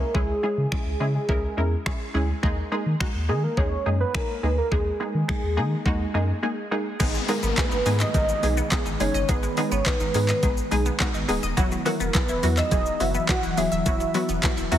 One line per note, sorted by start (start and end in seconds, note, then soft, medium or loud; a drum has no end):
0.00 0.16 A#4 medium
0.14 0.33 C#2 loud
0.14 0.35 G#3 medium
0.14 0.35 C#4 medium
0.14 0.35 E4 medium
0.14 1.14 G#4 loud
0.14 0.35 G#4 loud
0.14 kick loud
0.43 0.63 G#3 medium
0.43 0.63 C#4 medium
0.43 0.64 E4 medium
0.43 0.64 G#4 medium
0.58 0.66 C#3 medium
0.72 0.92 G#3 medium
0.72 0.92 C#4 medium
0.72 0.92 E4 medium
0.72 0.92 G#4 medium
0.72 finger snap loud
0.72 kick loud
0.86 0.95 C#2 medium
1.00 1.18 C#3 loud
1.00 1.21 G#3 medium
1.00 1.21 C#4 medium
1.00 1.21 E4 medium
1.00 1.21 G#4 medium
1.15 1.96 G#4 medium
1.29 1.47 C#2 loud
1.29 1.49 G#3 loud
1.29 1.49 C#4 medium
1.29 1.49 E4 medium
1.29 1.49 A#4 loud
1.29 kick loud
1.57 1.75 E2 loud
1.57 1.78 G#3 medium
1.57 1.78 C#4 medium
1.57 1.78 E4 medium
1.57 1.78 A#4 medium
1.86 2.06 G#3 medium
1.86 2.06 C#4 medium
1.86 2.06 E4 medium
1.86 2.06 G#4 medium
1.86 finger snap loud
1.86 kick loud
2.14 2.32 D2 medium
2.14 2.35 G#3 medium
2.14 2.35 C#4 medium
2.14 2.35 E4 medium
2.14 2.35 G#4 loud
2.43 2.61 D#2 loud
2.43 2.63 G#3 loud
2.43 2.63 A#3 loud
2.43 2.63 D#4 loud
2.43 2.64 G#4 loud
2.43 kick loud
2.43 swell medium
2.72 2.92 G#3 medium
2.72 2.92 A#3 medium
2.72 2.92 D#4 medium
2.72 2.92 G#4 loud
2.86 2.95 D#3 medium
3.00 3.21 G#3 medium
3.00 3.21 A#3 medium
3.00 3.21 D#4 medium
3.00 3.21 F#4 loud
3.00 finger snap loud
3.00 kick loud
3.15 3.30 D#2 medium
3.29 3.47 D#3 loud
3.29 3.49 G#3 medium
3.29 3.49 A#3 medium
3.29 3.49 D#4 medium
3.29 3.45 G#4 medium
3.29 3.49 G#4 medium
3.43 3.59 A#4 loud
3.57 3.75 D#2 loud
3.57 3.78 G#3 loud
3.57 3.78 A#3 medium
3.57 3.78 D#4 medium
3.57 3.78 G#4 loud
3.57 4.00 C#5 loud
3.57 kick loud
3.86 4.04 F#2 medium
3.86 4.06 G#3 medium
3.86 4.06 A#3 medium
3.86 4.06 D#4 medium
3.86 4.06 G#4 medium
4.00 4.16 B4 loud
4.14 4.35 G#3 medium
4.14 4.35 A#3 medium
4.14 4.35 D#4 medium
4.14 4.35 G#4 medium
4.14 4.45 A#4 loud
4.14 finger snap loud
4.14 kick loud
4.43 4.61 D2 loud
4.43 4.63 G#3 medium
4.43 4.64 A#3 medium
4.43 4.64 D#4 medium
4.43 4.64 G#4 medium
4.43 4.57 B4 loud
4.58 4.71 A#4 medium
4.71 4.90 D#2 loud
4.71 4.92 G#3 loud
4.71 4.92 A#3 medium
4.71 4.92 D#4 medium
4.71 4.92 G#4 loud
4.71 6.39 G#4 loud
4.71 kick loud
5.00 5.20 G#3 medium
5.00 5.21 A#3 medium
5.00 5.21 D#4 medium
5.00 5.21 G#4 medium
5.14 5.23 D#3 medium
5.28 5.49 G#3 medium
5.28 5.49 A#3 medium
5.28 5.49 D#4 medium
5.28 5.49 G#4 medium
5.28 finger snap loud
5.28 kick loud
5.43 5.59 D#2 medium
5.57 5.75 D#3 loud
5.57 5.78 G#3 medium
5.57 5.78 A#3 medium
5.57 5.78 D#4 medium
5.57 5.78 G#4 loud
5.86 6.04 D#2 loud
5.86 6.06 G#3 loud
5.86 6.06 A#3 loud
5.86 6.06 D#4 loud
5.86 6.06 F#4 loud
5.86 kick loud
6.14 6.32 F#2 loud
6.14 6.35 G#3 medium
6.14 6.35 A#3 medium
6.14 6.35 D#4 medium
6.14 6.35 G#4 medium
6.43 6.63 G#3 medium
6.43 6.63 A#3 medium
6.43 6.63 D#4 medium
6.43 6.63 G#4 loud
6.71 6.92 G#3 medium
6.71 6.92 A#3 medium
6.71 6.92 D#4 medium
6.71 6.92 G#4 medium
7.00 7.18 G#1 loud
7.00 7.08 D#3 medium
7.00 11.53 D#3 medium
7.00 7.20 G#3 loud
7.00 11.53 G#3 medium
7.00 7.20 B3 loud
7.00 14.78 B3 medium
7.00 7.20 D#4 loud
7.00 7.21 G#4 loud
7.00 kick loud
7.00 closed hi-hat medium
7.00 crash loud
7.00 downlifter medium
7.00 shaker medium
7.14 7.22 G#3 medium
7.14 shaker medium
7.28 7.36 D#3 medium
7.28 7.49 G#3 loud
7.28 7.49 B3 medium
7.28 7.49 D#4 medium
7.28 7.49 G#4 loud
7.28 7.42 A#4 medium
7.28 open hi-hat medium
7.28 shaker medium
7.43 7.52 G#1 medium
7.43 7.51 B3 loud
7.43 7.59 A#4 medium
7.43 shaker medium
7.57 7.65 D#3 medium
7.57 7.78 G#3 medium
7.57 7.78 B3 medium
7.57 7.78 D#4 medium
7.57 7.78 G#4 medium
7.57 8.02 B4 loud
7.57 kick loud
7.57 clap medium
7.57 clap loud
7.57 closed hi-hat medium
7.57 shaker medium
7.71 7.81 G#1 medium
7.71 7.79 D#4 medium
7.71 shaker medium
7.86 8.04 G#2 loud
7.86 7.93 D#3 medium
7.86 8.06 G#3 medium
7.86 8.06 B3 medium
7.86 8.06 D#4 medium
7.86 8.06 G#4 medium
7.86 open hi-hat medium
7.86 shaker medium
8.00 8.08 D#5 medium
8.00 8.14 D#5 loud
8.00 clap medium
8.00 shaker medium
8.14 8.32 G#1 loud
8.14 8.22 D#3 medium
8.14 8.35 G#3 medium
8.14 8.35 B3 medium
8.14 8.35 D#4 medium
8.14 8.35 A#4 medium
8.14 8.68 D#5 loud
8.14 kick loud
8.14 closed hi-hat medium
8.14 shaker medium
8.29 shaker medium
8.43 8.61 B1 medium
8.43 8.63 G#3 medium
8.43 8.63 B3 medium
8.43 8.63 D#4 medium
8.43 8.64 G#4 medium
8.43 open hi-hat medium
8.43 shaker medium
8.57 8.65 B3 medium
8.57 shaker medium
8.71 8.79 D#3 medium
8.71 8.92 G#3 loud
8.71 8.92 B3 medium
8.71 8.92 D#4 medium
8.71 8.92 G#4 loud
8.71 kick loud
8.71 clap loud
8.71 clap medium
8.71 closed hi-hat medium
8.71 shaker medium
8.86 8.95 G#1 medium
8.86 8.94 D#4 medium
8.86 shaker medium
9.00 9.09 F#1 medium
9.00 9.21 G#3 medium
9.00 9.21 B3 medium
9.00 9.21 D#4 medium
9.00 9.21 G#4 medium
9.00 9.30 C#5 loud
9.00 open hi-hat medium
9.00 shaker medium
9.14 9.23 G1 medium
9.14 9.22 D#5 loud
9.14 shaker medium
9.29 9.47 G#1 loud
9.29 9.36 D#3 medium
9.29 9.49 G#3 loud
9.29 9.49 B3 medium
9.29 9.49 D#4 medium
9.29 9.49 G#4 loud
9.29 9.73 B4 loud
9.29 kick loud
9.29 closed hi-hat medium
9.29 shaker medium
9.43 9.51 G#3 medium
9.43 shaker medium
9.57 9.65 D#3 medium
9.57 9.78 G#3 loud
9.57 9.78 B3 medium
9.57 9.78 D#4 medium
9.57 9.78 G#4 loud
9.57 open hi-hat medium
9.57 shaker medium
9.72 9.81 G#1 medium
9.72 9.79 B3 loud
9.72 9.87 C#5 loud
9.72 shaker medium
9.86 9.94 D#3 medium
9.86 10.06 G#3 medium
9.86 10.06 B3 medium
9.86 10.06 D#4 medium
9.86 10.07 G#4 medium
9.86 11.29 B4 loud
9.86 kick loud
9.86 clap loud
9.86 clap medium
9.86 closed hi-hat medium
9.86 shaker medium
10.00 10.09 G#1 loud
10.00 10.08 D#4 medium
10.00 shaker medium
10.14 10.32 G#2 loud
10.14 10.22 D#3 medium
10.14 10.35 G#3 medium
10.14 10.35 B3 medium
10.14 10.35 D#4 medium
10.14 10.35 G#4 medium
10.14 open hi-hat medium
10.14 shaker medium
10.28 10.36 D#5 medium
10.28 clap medium
10.28 shaker medium
10.43 10.61 G#1 loud
10.43 10.51 D#3 medium
10.43 10.63 G#3 medium
10.43 10.63 B3 medium
10.43 10.63 D#4 medium
10.43 10.64 G#4 medium
10.43 kick loud
10.43 closed hi-hat medium
10.43 shaker medium
10.57 shaker medium
10.71 10.90 B1 medium
10.71 10.92 G#3 medium
10.71 10.92 B3 medium
10.71 10.92 D#4 medium
10.71 10.92 G#4 loud
10.71 open hi-hat medium
10.71 shaker medium
10.86 10.94 B3 medium
10.86 shaker medium
11.00 11.08 D#3 medium
11.00 11.20 G#3 loud
11.00 11.20 B3 loud
11.00 11.20 D#4 loud
11.00 11.21 F#4 loud
11.00 kick loud
11.00 clap loud
11.00 clap medium
11.00 closed hi-hat medium
11.00 shaker medium
11.14 11.23 G#1 medium
11.14 11.22 D#4 medium
11.14 shaker medium
11.28 11.38 D1 medium
11.28 11.49 G#3 medium
11.28 11.49 B3 medium
11.28 11.49 D#4 medium
11.28 11.49 G#4 loud
11.28 open hi-hat medium
11.28 shaker medium
11.43 11.52 D#1 medium
11.43 11.51 D#5 loud
11.43 shaker medium
11.57 11.75 E1 loud
11.57 14.78 E3 medium
11.57 11.65 E3 medium
11.57 11.78 F#3 loud
11.57 14.78 F#3 medium
11.57 11.78 B3 loud
11.57 11.78 E4 loud
11.57 11.78 F#4 loud
11.57 kick loud
11.57 closed hi-hat medium
11.57 shaker medium
11.72 11.79 F#3 medium
11.72 shaker medium
11.85 11.94 E3 medium
11.85 12.06 F#3 loud
11.85 12.06 B3 medium
11.85 12.06 E4 medium
11.85 12.06 F#4 loud
11.85 11.99 A#4 medium
11.85 open hi-hat medium
11.85 shaker medium
12.00 12.09 E1 medium
12.00 12.08 B3 medium
12.00 12.17 A#4 medium
12.00 shaker medium
12.14 12.22 E3 medium
12.14 12.35 F#3 medium
12.14 12.35 B3 medium
12.14 12.35 E4 medium
12.14 12.35 G#4 medium
12.14 12.59 B4 medium
12.14 kick loud
12.14 clap loud
12.14 clap medium
12.14 closed hi-hat medium
12.14 shaker medium
12.29 12.38 E1 loud
12.29 12.37 E4 medium
12.29 shaker medium
12.43 12.61 E2 loud
12.43 12.51 E3 medium
12.43 12.63 F#3 medium
12.43 12.63 B3 medium
12.43 12.64 E4 medium
12.43 12.64 F#4 medium
12.43 open hi-hat medium
12.43 shaker medium
12.57 12.72 D#5 loud
12.57 12.65 E5 medium
12.57 clap medium
12.57 shaker medium
12.71 12.89 E1 loud
12.71 12.79 E3 medium
12.71 12.92 F#3 medium
12.71 12.92 B3 medium
12.71 12.92 E4 medium
12.71 12.92 G#4 medium
12.71 13.02 D#5 loud
12.71 kick loud
12.71 closed hi-hat medium
12.71 shaker medium
12.86 shaker medium
13.00 13.18 F#1 loud
13.00 13.20 F#3 medium
13.00 13.21 B3 medium
13.00 13.21 E4 medium
13.00 13.21 F#4 medium
13.00 13.31 E5 loud
13.00 open hi-hat medium
13.00 shaker medium
13.14 13.22 B3 medium
13.14 shaker medium
13.29 13.36 E3 medium
13.29 13.49 F#3 medium
13.29 13.49 B3 medium
13.29 13.49 E4 medium
13.29 13.49 F#4 loud
13.29 13.59 F#5 loud
13.29 kick loud
13.29 clap loud
13.29 clap medium
13.29 closed hi-hat medium
13.29 shaker medium
13.43 13.52 E1 medium
13.43 13.51 E4 medium
13.43 shaker soft
13.57 13.66 D1 medium
13.57 13.78 F#3 medium
13.57 13.78 B3 medium
13.57 13.78 E4 medium
13.57 13.78 G#4 medium
13.57 14.72 E5 loud
13.57 open hi-hat medium
13.57 shaker medium
13.72 13.81 D#1 medium
13.72 13.79 E5 loud
13.72 shaker medium
13.86 14.04 E1 loud
13.86 13.94 E3 medium
13.86 14.06 F#3 loud
13.86 14.06 B3 medium
13.86 14.06 E4 medium
13.86 14.06 F#4 loud
13.86 kick loud
13.86 closed hi-hat medium
13.86 shaker medium
14.00 14.08 F#3 medium
14.00 shaker soft
14.14 14.22 E3 medium
14.14 14.35 F#3 medium
14.14 14.35 B3 medium
14.14 14.35 E4 medium
14.14 14.35 F#4 loud
14.14 open hi-hat medium
14.14 shaker medium
14.29 14.38 E1 loud
14.29 14.36 B3 loud
14.29 shaker medium
14.43 14.51 E3 medium
14.43 14.63 F#3 medium
14.43 14.63 B3 medium
14.43 14.64 E4 medium
14.43 14.64 F#4 loud
14.43 kick loud
14.43 clap medium
14.43 clap loud
14.43 closed hi-hat medium
14.43 shaker medium
14.57 14.67 E1 loud
14.57 14.65 E4 medium
14.57 shaker medium
14.71 14.78 E2 loud
14.71 14.78 E3 medium
14.71 14.78 F#3 loud
14.71 14.78 B3 medium
14.71 14.78 E4 medium
14.71 14.78 F#4 loud
14.71 open hi-hat medium
14.71 shaker medium